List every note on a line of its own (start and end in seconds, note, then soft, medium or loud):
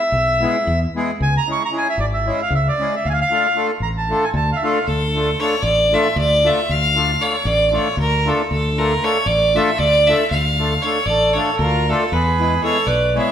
0.00 0.79 E5 loud
0.12 0.45 B1 medium
0.40 0.56 G#3 medium
0.40 0.57 B3 medium
0.40 0.57 E4 medium
0.40 0.57 G#4 medium
0.67 0.84 E2 loud
0.95 1.11 G#3 medium
0.95 1.11 B3 medium
0.95 1.11 E4 medium
0.95 1.11 G#4 medium
1.20 1.37 C#2 medium
1.20 1.35 G#5 medium
1.37 1.49 A#5 loud
1.46 1.62 G#3 medium
1.46 1.63 C#4 medium
1.46 1.63 E4 medium
1.46 1.63 G#4 medium
1.52 1.63 C#6 loud
1.65 1.75 A#5 loud
1.71 1.87 G#3 medium
1.71 1.87 C#4 medium
1.71 1.88 E4 medium
1.71 1.88 G#4 medium
1.78 1.88 G#5 medium
1.90 2.00 E5 medium
1.97 2.30 G#1 medium
1.97 2.06 D5 medium
2.14 2.40 E5 medium
2.24 2.41 G#3 medium
2.24 2.41 C#4 medium
2.24 2.41 E4 medium
2.24 2.42 G#4 medium
2.42 2.53 F5 medium
2.50 2.68 C#2 medium
2.55 2.68 E5 medium
2.68 2.95 D5 medium
2.78 2.94 G#3 medium
2.78 2.95 C#4 medium
2.78 2.95 E4 medium
2.78 2.95 G#4 medium
2.96 3.07 E5 medium
3.05 3.21 D2 medium
3.05 3.09 F5 medium
3.10 3.19 F5 medium
3.10 3.13 G#5 medium
3.21 3.67 F5 loud
3.30 3.46 A3 medium
3.30 3.46 D4 medium
3.30 3.47 F4 soft
3.30 3.47 A4 medium
3.54 3.70 A3 medium
3.54 3.70 D4 medium
3.54 3.71 F4 medium
3.54 3.71 A4 medium
3.80 4.13 A1 medium
3.80 3.89 A#5 medium
3.97 4.24 A5 medium
4.09 4.25 A3 medium
4.09 4.25 D4 medium
4.09 4.25 F4 medium
4.09 4.25 A4 medium
4.24 4.29 G#5 medium
4.34 4.51 D2 loud
4.34 4.50 A5 medium
4.53 4.63 E5 medium
4.53 4.58 F5 medium
4.63 4.78 A3 medium
4.63 4.78 D4 medium
4.63 4.79 F4 medium
4.63 4.79 A4 medium
4.63 4.86 F5 medium
4.87 5.33 D2 medium
4.87 5.41 A4 loud
5.15 5.30 A3 medium
5.15 5.30 D4 soft
5.15 5.30 F4 medium
5.15 5.31 A4 medium
5.40 5.55 A3 medium
5.40 5.55 D4 medium
5.40 5.55 F4 medium
5.40 5.55 A4 medium
5.40 5.64 C#5 loud
5.62 5.95 A1 medium
5.62 5.95 D5 loud
5.92 6.07 A3 medium
5.92 6.08 D4 medium
5.92 6.08 F4 medium
5.92 6.08 A4 medium
5.92 6.17 E5 loud
6.16 6.48 D2 loud
6.16 6.48 D5 loud
6.44 6.60 A3 medium
6.44 6.60 D4 medium
6.44 6.60 F4 medium
6.44 6.60 A4 medium
6.44 6.72 E5 loud
6.69 7.15 D2 medium
6.69 7.23 F5 loud
6.95 7.11 A3 medium
6.95 7.11 D4 medium
6.95 7.11 F4 medium
6.95 7.12 A4 medium
7.19 7.35 A3 medium
7.19 7.35 D4 medium
7.19 7.36 F4 medium
7.19 7.36 A4 medium
7.19 7.47 C#5 loud
7.45 7.77 A1 loud
7.45 7.68 D5 loud
7.68 7.88 A3 medium
7.68 7.88 D4 medium
7.68 7.76 D5 medium
7.72 7.88 F4 medium
7.72 7.89 A4 medium
7.72 7.99 C#5 loud
7.97 8.30 D2 loud
7.97 8.30 A#4 loud
8.26 8.42 A3 medium
8.26 8.42 D4 medium
8.26 8.42 F4 medium
8.26 8.42 A4 medium
8.26 8.51 A4 loud
8.51 8.96 D2 medium
8.51 8.80 A4 loud
8.77 8.93 A3 medium
8.77 8.93 D4 medium
8.77 8.93 F4 medium
8.77 8.94 A4 medium
8.77 9.06 A#4 loud
9.02 9.17 A3 medium
9.02 9.18 D4 medium
9.02 9.18 F4 medium
9.02 9.18 A4 medium
9.02 9.28 C#5 loud
9.26 9.58 A1 medium
9.26 9.57 D5 loud
9.54 9.70 A3 medium
9.54 9.70 D4 medium
9.54 9.71 F4 medium
9.54 9.71 A4 medium
9.54 9.80 E5 loud
9.79 10.11 D2 medium
9.79 10.09 D5 loud
10.07 10.23 A3 medium
10.07 10.23 D4 medium
10.07 10.24 F4 medium
10.07 10.24 A4 medium
10.07 10.30 E5 loud
10.30 10.76 D2 medium
10.30 10.83 F5 loud
10.58 10.73 A3 medium
10.58 10.74 D4 medium
10.58 10.74 F4 medium
10.58 10.74 A4 medium
10.82 10.98 A3 medium
10.82 10.98 D4 medium
10.82 10.99 F4 medium
10.82 10.99 A4 medium
10.82 11.07 C#5 loud
11.06 11.38 A1 medium
11.06 11.35 D5 loud
11.10 11.37 A4 medium
11.33 11.50 A3 medium
11.33 11.50 D4 medium
11.33 11.51 F4 medium
11.33 11.58 C#5 medium
11.37 11.51 A4 medium
11.37 11.62 A4 medium
11.59 11.91 D2 loud
11.59 11.90 A#4 medium
11.63 11.87 F4 medium
11.88 12.03 A3 medium
11.88 12.04 D4 medium
11.88 12.13 F4 medium
11.88 12.04 F4 medium
11.88 12.14 A4 medium
11.88 12.04 A4 medium
12.12 12.57 E2 medium
12.12 12.64 G#4 medium
12.12 12.63 B4 medium
12.39 12.54 G#3 medium
12.39 12.54 B3 soft
12.39 12.54 E4 medium
12.39 12.55 G#4 medium
12.62 12.77 G#3 medium
12.62 12.78 B3 medium
12.62 12.78 E4 medium
12.62 12.78 G#4 medium
12.62 12.86 A4 medium
12.62 12.88 C#5 loud
12.86 13.18 B1 medium
12.86 13.16 B4 medium
12.86 13.15 D5 medium
13.14 13.30 G#3 medium
13.14 13.30 B3 medium
13.14 13.31 E4 medium
13.14 13.31 G#4 medium
13.14 13.32 C#5 medium
13.14 13.32 E5 medium